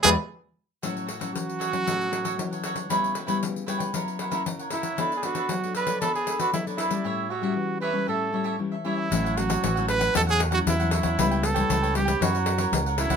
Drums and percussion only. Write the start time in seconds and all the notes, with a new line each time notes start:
0.04 pandeiro
0.83 pandeiro
0.97 pandeiro
1.09 pandeiro
1.21 pandeiro
1.35 pandeiro
1.49 pandeiro
1.61 pandeiro
1.73 pandeiro
1.87 pandeiro
2.01 pandeiro
2.13 pandeiro
2.25 pandeiro
2.39 pandeiro
2.53 pandeiro
2.64 pandeiro
2.76 pandeiro
2.90 pandeiro
3.04 pandeiro
3.15 pandeiro
3.28 pandeiro
3.43 pandeiro
3.56 pandeiro
3.68 pandeiro
3.80 pandeiro
3.94 pandeiro
4.08 pandeiro
4.19 pandeiro
4.32 pandeiro
4.46 pandeiro
4.59 pandeiro
4.70 pandeiro
4.83 pandeiro
4.98 pandeiro
5.12 pandeiro
5.23 pandeiro
5.35 pandeiro
5.49 pandeiro
5.64 pandeiro
5.75 pandeiro
5.87 pandeiro
6.02 pandeiro
6.15 pandeiro
6.27 pandeiro
6.40 pandeiro
6.54 pandeiro
6.67 pandeiro
6.78 pandeiro
6.91 pandeiro
9.12 pandeiro
9.26 pandeiro
9.37 pandeiro
9.50 pandeiro
9.64 pandeiro
9.77 pandeiro
9.88 pandeiro
10.01 pandeiro
10.15 pandeiro
10.29 pandeiro
10.40 pandeiro
10.52 pandeiro
10.67 pandeiro
10.80 pandeiro
10.91 pandeiro
11.03 pandeiro
11.19 pandeiro
11.31 pandeiro
11.43 pandeiro
11.56 pandeiro
11.70 pandeiro
11.84 pandeiro
11.95 pandeiro
12.08 pandeiro
12.22 pandeiro
12.35 pandeiro
12.46 pandeiro
12.58 pandeiro
12.73 pandeiro
12.86 pandeiro
12.98 pandeiro
13.10 pandeiro